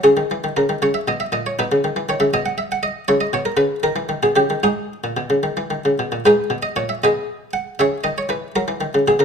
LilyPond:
<<
  \new Staff \with { instrumentName = "Harpsichord" } { \time 6/8 \key gis \minor \tempo 4. = 78 << { gis'4 ais'8 cis''16 e''16 dis''16 e''16 dis''16 cis''16 | b'4 cis''16 e''16 dis''16 fis''16 e''16 fis''16 dis''8 | cis''16 dis''16 cis''16 ais'16 b'8 ais'8. gis'16 g'8 | gis'2~ gis'8 r8 |
<dis' gis' b'>8. dis''16 cis''16 e''16 <gis' b' dis''>4 fis''8 | <gis' cis'' e''>8 dis''16 cis''16 b'8 ais'4 gis'16 ais'16 | } \\ { cis'4. r4. | dis'4. r4. | e'4. r4. | dis'2. |
r2. | r2. | } >> }
  \new Staff \with { instrumentName = "Harpsichord" } { \clef bass \time 6/8 \key gis \minor cis16 dis16 e16 dis16 cis16 dis16 cis8 b,8 ais,8 | b,16 cis16 dis16 e16 dis16 cis16 b,4. | cis8 b,8 cis8 dis16 e16 dis16 b,16 cis16 dis16 | gis,8. ais,16 b,16 cis16 dis16 e16 dis16 cis16 b,16 ais,16 |
gis,8 b,8 ais,8 b,4. | cis8 dis8 e8 fis16 e16 dis16 cis16 b,16 cis16 | }
>>